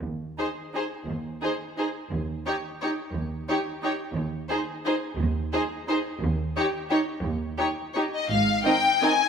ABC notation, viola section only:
X:1
M:3/4
L:1/8
Q:1/4=173
K:Ab
V:1 name="Viola section"
z2 E2 E2 | z2 E2 E2 | z2 E2 E2 | z2 E2 E2 |
z2 E2 E2 | z2 E2 E2 | z2 E2 E2 | z2 E2 E2 |
z2 [E,C]2 [E,C]2 |]